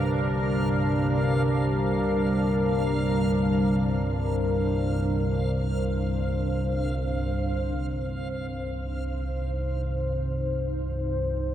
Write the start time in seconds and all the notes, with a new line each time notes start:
Already playing: C2 G2 D4 A#4 C5 F5
7.79 C2 G2 D#4
8.72 F4